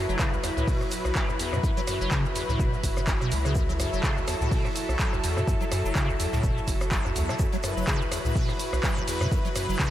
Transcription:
Already playing: analog synth pad F#3 E4 B4
0.09 analog synth bass F#1, acid bass F#3, cabasa
0.19 acid bass C#3, kick, cross-stick, snare, clap, cabasa, shaker
0.33 acid bass F#1, cabasa
0.44 acid bass E2, cross-stick, open hi-hat, cabasa, shaker
0.57 analog synth bass C#2, acid bass A2, cabasa
0.67 acid bass B2, kick, open hi-hat, cabasa
0.81 acid bass F#2, cross-stick, cabasa
0.91 open hi-hat, cabasa, shaker
1.05 analog synth bass B1, cross-stick, cabasa
1.15 acid bass F#3, kick, snare, clap, cabasa, shaker
1.29 acid bass F#1, cross-stick, cabasa
1.39 acid bass E2, open hi-hat, cabasa, shaker
1.53 analog synth bass F#2, acid bass C#3, cross-stick, cabasa
1.63 acid bass F#2, kick, cabasa, shaker
1.77 acid bass F#3, closed hi-hat, cabasa
1.87 acid bass F#2, cross-stick, open hi-hat, cabasa, shaker
2.01 analog synth bass F#1, acid bass F#3, cabasa
2.11 acid bass C#3, kick, cross-stick, snare, clap, cabasa, shaker
2.25 acid bass F#1, cabasa
2.35 acid bass E2, open hi-hat, cabasa, shaker
2.49 analog synth bass C#2, acid bass A2, snare, cabasa
2.59 analog synth bass F#1, acid bass B2, kick, cabasa, shaker
2.73 acid bass F#2, cabasa
2.83 analog synth bass F#1, kick, open hi-hat, cabasa, shaker
2.96 acid bass F#2, cross-stick, closed hi-hat, cabasa
3.07 acid bass F#2, kick, snare, clap, cabasa, shaker
3.21 acid bass B2, cross-stick, cabasa
3.31 analog synth bass C#2, acid bass A3, open hi-hat, cabasa, shaker
3.45 acid bass C#3, cross-stick, snare, cabasa
3.55 acid bass F#2, analog synth pad A4, kick, cabasa, shaker
3.69 acid bass F#3, closed hi-hat, cabasa
3.79 acid bass F#2, cross-stick, open hi-hat, cabasa, shaker
3.93 analog synth bass F#1, acid bass F#3, cabasa
4.03 acid bass C#3, kick, cross-stick, snare, clap, cabasa, shaker
4.17 acid bass F#1, cabasa
4.27 acid bass E2, cross-stick, open hi-hat, cabasa, shaker
4.41 analog synth bass C#2, acid bass A2, cabasa
4.51 acid bass B2, kick, open hi-hat, cabasa
4.65 acid bass F#2, cross-stick, cabasa
4.75 open hi-hat, cabasa, shaker
4.89 analog synth bass B1, cross-stick, cabasa
4.99 acid bass F#3, kick, snare, clap, cabasa, shaker
5.13 acid bass F#1, cross-stick, cabasa
5.24 acid bass E2, open hi-hat, cabasa, shaker
5.37 analog synth bass F#2, acid bass C#3, cross-stick, cabasa
5.47 acid bass F#2, kick, cabasa, shaker
5.61 acid bass F#3, closed hi-hat, cabasa
5.72 acid bass F#2, cross-stick, open hi-hat, cabasa, shaker
5.85 analog synth bass F#1, acid bass F#3, cabasa
5.95 acid bass C#3, kick, cross-stick, snare, clap, cabasa, shaker
6.09 acid bass F#1, cabasa
6.20 acid bass E2, open hi-hat, cabasa, shaker
6.32 analog synth bass C#2, acid bass A2, snare, cabasa
6.43 analog synth bass F#1, acid bass B2, kick, cabasa, shaker
6.57 acid bass F#2, cabasa
6.67 analog synth bass F#1, kick, open hi-hat, cabasa, shaker
6.80 cross-stick, closed hi-hat, cabasa
6.91 acid bass F#3, kick, snare, clap, cabasa, shaker
7.05 acid bass F#1, analog synth bass F#2, cross-stick, cabasa
7.15 analog synth bass C#2, acid bass E2, open hi-hat, cabasa, shaker
7.29 acid bass C#3, cross-stick, snare, cabasa
7.39 acid bass F#2, analog synth pad B4, kick, cabasa, shaker
7.52 acid bass F#3, closed hi-hat, cabasa
7.63 acid bass F#2, cross-stick, open hi-hat, cabasa, shaker
7.77 analog synth bass F#1, acid bass F#3, cabasa
7.87 acid bass C#3, kick, cross-stick, snare, clap, cabasa, shaker
8.01 acid bass F#1, cabasa
8.12 acid bass E2, cross-stick, open hi-hat, cabasa, shaker
8.25 analog synth bass C#2, acid bass A2, cabasa
8.36 acid bass B2, kick, open hi-hat, cabasa
8.49 acid bass F#2, cross-stick, cabasa
8.59 open hi-hat, cabasa, shaker
8.73 analog synth bass B1, cross-stick, cabasa
8.83 acid bass F#3, kick, snare, clap, cabasa, shaker
8.97 acid bass F#1, cross-stick, cabasa
9.07 acid bass E2, open hi-hat, cabasa
9.21 analog synth bass F#2, acid bass C#3, cross-stick, cabasa
9.31 acid bass F#2, kick, cabasa, shaker
9.45 acid bass F#3, cabasa
9.55 acid bass F#2, cross-stick, open hi-hat, cabasa, shaker
9.69 analog synth bass F#1, acid bass F#3, cabasa
9.79 acid bass C#3, kick, cross-stick, snare, clap, cabasa, shaker

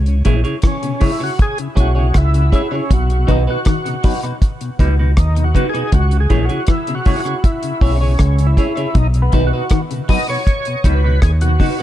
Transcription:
Already playing: fingered electric bass C#2
0.06 tonewheel organ C#3, closed hi-hat
0.25 fingered electric bass A#1, clean electric guitar E3 E4 G#4 C#5, tonewheel organ G#3 C#4 E4, kick, closed hi-hat
0.44 tonewheel organ C#3, clean electric guitar E4 G#4 C#5, closed hi-hat
0.62 clean electric guitar E3, kick, cross-stick, closed hi-hat
0.67 tonewheel organ C#4
0.83 clean electric guitar B2, tonewheel organ C#3, closed hi-hat
1.00 clean electric guitar C#3 E4 G#4 C#5, tonewheel organ G#3 C#4 E4, kick, open hi-hat
1.05 tonewheel organ E4
1.19 tonewheel organ C#3, clean electric guitar E4 G#4 C#5
1.24 tonewheel organ F#4
1.39 tonewheel organ G#4, kick, closed hi-hat
1.58 tonewheel organ C#3, closed hi-hat
1.75 fingered electric bass B1, tonewheel organ G#3 C#4 E4, clean electric guitar E4 G#4 C#5, kick, closed hi-hat
1.80 tonewheel organ F#4
1.95 tonewheel organ C#3, clean electric guitar E4 G#4 C#5
2.14 fingered electric bass C#2, tonewheel organ E4, kick, cross-stick, closed hi-hat
2.34 tonewheel organ C#3, closed hi-hat
2.52 tonewheel organ G#3 C#4 E4, clean electric guitar E4 G#4 C#5, kick, closed hi-hat
2.71 tonewheel organ C#3 C#4, clean electric guitar E4 G#4 C#5
2.91 fingered electric bass B1, clean electric guitar B2, tonewheel organ F#4, kick, closed hi-hat
3.10 tonewheel organ B2, closed hi-hat
3.27 fingered electric bass B1, clean electric guitar D#3 D#4 F#4 B4, tonewheel organ F#3 B3 D#4, kick, closed hi-hat
3.47 tonewheel organ B2 F#4, clean electric guitar D#4 F#4 B4
3.65 clean electric guitar D#3, kick, cross-stick, closed hi-hat
3.85 tonewheel organ B2, clean electric guitar C#3, closed hi-hat
4.04 clean electric guitar F#3 D#4 F#4 B4, tonewheel organ F#3 B3 D#4, kick, open hi-hat
4.23 tonewheel organ B2, clean electric guitar D#4 F#4 B4, closed hi-hat
4.42 kick, closed hi-hat
4.61 tonewheel organ B2, closed hi-hat
4.79 fingered electric bass C#2, tonewheel organ F#3 B3 D#4, clean electric guitar D#4 F#4 B4, kick, closed hi-hat
4.99 tonewheel organ B2, clean electric guitar D#4 F#4 B4
5.17 fingered electric bass D#2, tonewheel organ D#4, kick, cross-stick, closed hi-hat
5.36 tonewheel organ B2, clean electric guitar D#3, closed hi-hat
5.44 tonewheel organ F#4
5.55 clean electric guitar C#3 D#4 F#4 B4, tonewheel organ F#3 B3 D#4, kick, closed hi-hat
5.69 tonewheel organ G#4
5.74 tonewheel organ B2, clean electric guitar D#4 F#4 B4, closed hi-hat
5.92 fingered electric bass C#2, clean electric guitar C#3, tonewheel organ F#4, kick, closed hi-hat
6.11 tonewheel organ C#3, closed hi-hat
6.20 tonewheel organ G#4
6.30 fingered electric bass A#1, clean electric guitar E3 E4 G#4 C#5, tonewheel organ G#3 C#4 E4, kick, closed hi-hat
6.45 tonewheel organ F#4, clean electric guitar C#5
6.49 tonewheel organ C#3, clean electric guitar E4 G#4, closed hi-hat
6.67 clean electric guitar E3, tonewheel organ E4, kick, cross-stick, closed hi-hat
6.87 clean electric guitar B2, tonewheel organ C#3, closed hi-hat
6.95 tonewheel organ F#4
7.05 clean electric guitar C#3 E4 G#4 C#5, tonewheel organ G#3 C#4 E4, kick, open hi-hat
7.20 tonewheel organ F#4
7.25 tonewheel organ C#3, clean electric guitar E4 G#4 C#5, closed hi-hat
7.44 tonewheel organ E4, kick, closed hi-hat
7.63 tonewheel organ C#3, closed hi-hat
7.81 fingered electric bass B1, tonewheel organ G#3 C#4 E4, clean electric guitar E4 G#4 C#5, kick, open hi-hat
7.95 tonewheel organ C#4
8.01 tonewheel organ C#3, clean electric guitar E4 G#4 C#5
8.19 fingered electric bass C#2, kick, cross-stick, closed hi-hat
8.39 tonewheel organ C#3, closed hi-hat
8.47 tonewheel organ E4
8.57 tonewheel organ G#3 C#4 E4, clean electric guitar E4 G#4 C#5, kick, closed hi-hat
8.77 tonewheel organ C#3, clean electric guitar E4 G#4 C#5, closed hi-hat
8.95 fingered electric bass B1, clean electric guitar B2, tonewheel organ D#4, kick, closed hi-hat
9.14 tonewheel organ B2, closed hi-hat
9.22 tonewheel organ B3
9.32 fingered electric bass B1, clean electric guitar D#3 D#4 F#4 B4, tonewheel organ F#3 B3 D#4, kick, closed hi-hat
9.47 tonewheel organ F#4
9.53 tonewheel organ B2, clean electric guitar D#4 F#4 B4
9.70 clean electric guitar D#3, kick, cross-stick, closed hi-hat
9.91 tonewheel organ B2, clean electric guitar C#3, closed hi-hat
10.09 tonewheel organ F#3 B3 D#4 D#5, clean electric guitar F#3 D#4 F#4 B4, kick, open hi-hat
10.29 tonewheel organ B2 C#5, clean electric guitar D#4 F#4 B4
10.47 kick, closed hi-hat
10.65 tonewheel organ B2, closed hi-hat
10.84 fingered electric bass C#2, tonewheel organ F#3 B3 D#4 B4, clean electric guitar D#4 F#4 B4, kick, closed hi-hat
11.04 tonewheel organ B2, clean electric guitar D#4 F#4 B4
11.22 fingered electric bass D#2, tonewheel organ G#4, kick, cross-stick, closed hi-hat
11.41 tonewheel organ B2 F#4, clean electric guitar D#3, closed hi-hat
11.60 clean electric guitar C#3 D#4 F#4 B4, tonewheel organ F#3 B3 D#4, kick, open hi-hat

